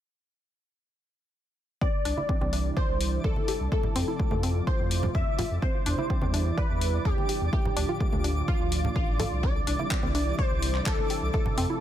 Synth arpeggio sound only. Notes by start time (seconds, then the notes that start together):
1.81 C4
2.05 D4
2.17 E4
2.29 C4
2.41 C4
2.53 D4
2.77 D5
3.48 G4
3.72 A3
3.96 C4
4.08 E4
4.20 A3
4.32 A3
4.43 C4
4.67 C5
5.39 F4
5.62 C4
5.86 D4
5.98 E4
6.10 C4
6.22 C4
6.34 D4
6.58 D5
7.29 G4
7.53 A3
7.76 D4
7.89 F4
8.00 A3
8.13 A3
8.24 D4
8.48 F5
9.20 A4
9.43 C4
9.67 D4
9.79 E4
9.91 C4
10.03 C4
10.15 D4
10.39 D5
11.10 G4
11.34 A3
11.58 C4
11.70 E4